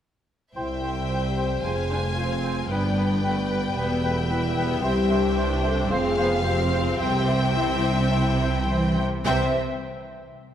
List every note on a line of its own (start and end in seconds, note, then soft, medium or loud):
0.56 1.60 C2 soft
0.56 1.61 G3 soft
0.56 2.67 C4 soft
0.56 1.06 E4 medium
0.56 0.68 C5 soft
0.56 2.66 C5 soft
0.56 1.60 E5 soft
0.56 0.62 G5 soft
0.56 1.60 G5 soft
0.83 0.96 C5 soft
0.83 0.90 G5 soft
1.10 1.18 F4 medium
1.10 1.22 C5 soft
1.10 1.17 G5 soft
1.28 1.46 G4 medium
1.38 1.50 C5 soft
1.38 1.44 G5 soft
1.46 1.54 A4 medium
1.63 2.71 F1 soft
1.63 2.71 F2 soft
1.63 2.71 F3 soft
1.63 1.72 C4 soft
1.63 2.16 G#4 medium
1.63 1.76 C5 soft
1.63 2.68 F5 soft
1.63 2.70 G#5 soft
1.63 1.70 G#5 soft
1.90 1.98 D4 soft
1.90 2.02 C5 soft
1.90 1.97 G#5 soft
2.16 2.69 C4 soft
2.16 2.70 F4 medium
2.16 2.30 C5 soft
2.16 2.24 G#5 soft
2.44 2.56 C5 soft
2.44 2.51 G#5 soft
2.70 3.75 G1 soft
2.70 3.75 G2 soft
2.70 4.81 G3 soft
2.70 3.23 B3 soft
2.70 4.80 B3 soft
2.70 3.23 D4 medium
2.70 2.82 B4 soft
2.70 4.84 B4 soft
2.70 3.78 D5 soft
2.70 2.76 G5 soft
2.70 5.88 G5 soft
2.97 3.10 B4 soft
2.97 3.03 G5 soft
3.23 3.50 A3 soft
3.23 3.76 B3 medium
3.23 3.35 B4 soft
3.23 3.29 G5 soft
3.50 3.77 G3 soft
3.50 3.62 B4 soft
3.50 3.56 G5 soft
3.77 4.82 E1 medium
3.77 4.82 E2 medium
3.77 4.29 B3 medium
3.77 4.04 B3 medium
3.77 3.89 B4 soft
3.77 5.92 E5 medium
3.77 3.83 G5 soft
4.04 4.30 A3 soft
4.04 4.16 B4 soft
4.04 4.10 G5 soft
4.30 4.57 G3 soft
4.30 4.84 E4 medium
4.30 4.42 B4 soft
4.30 4.36 G5 soft
4.57 4.83 B3 medium
4.57 4.69 B4 soft
4.57 4.63 G5 soft
4.83 5.89 C2 medium
4.83 5.88 E3 medium
4.83 8.94 C4 medium
4.83 5.11 C4 medium
4.83 5.62 G4 medium
4.83 4.95 C5 medium
4.83 9.02 C5 medium
4.83 4.90 E5 medium
5.10 5.90 D4 medium
5.10 5.23 C5 soft
5.10 5.16 E5 soft
5.37 5.50 C5 medium
5.37 5.43 E5 medium
5.63 5.77 A4 medium
5.63 5.76 C5 soft
5.63 5.69 E5 medium
5.89 7.00 F1 medium
5.89 7.00 F2 medium
5.89 6.99 F3 medium
5.89 6.18 C4 medium
5.89 6.44 G#4 medium
5.89 6.03 C5 medium
5.89 5.97 F5 medium
5.89 7.00 F5 medium
6.18 6.45 B3 medium
6.18 6.30 C5 medium
6.18 6.24 F5 medium
6.44 7.54 C4 medium
6.44 6.62 G4 medium
6.44 6.57 C5 medium
6.44 6.52 F5 medium
6.63 6.81 F4 medium
6.72 6.84 C5 medium
6.72 6.78 F5 soft
6.80 6.99 G#4 medium
6.99 9.01 C2 medium
6.99 8.60 C3 medium
6.99 8.94 E3 medium
6.99 7.55 G4 loud
6.99 7.12 C5 medium
6.99 7.06 E5 medium
6.99 9.05 E5 medium
6.99 9.02 G5 medium
7.27 7.40 C5 soft
7.27 7.33 E5 medium
7.54 8.11 C4 medium
7.54 7.74 E4 medium
7.54 7.68 C5 medium
7.54 7.61 E5 medium
7.75 7.93 E4 medium
7.83 7.97 C5 soft
7.83 7.90 E5 medium
7.93 8.12 D4 medium
8.11 8.69 C4 medium
8.11 8.96 E4 medium
8.11 8.26 C5 medium
8.11 8.18 E5 medium
8.41 8.54 C5 soft
8.41 8.47 E5 soft
8.69 8.96 E3 medium
8.69 8.82 C5 medium
8.69 8.76 E5 medium
8.97 9.25 C3 medium
8.97 9.11 C5 soft
8.97 9.04 E5 soft
9.25 9.59 C2 medium
9.25 9.58 C3 medium
9.25 9.50 E3 medium
9.25 9.50 C4 medium
9.25 9.58 C5 medium
9.25 9.51 C5 medium
9.25 9.58 E5 medium
9.25 9.58 G5 medium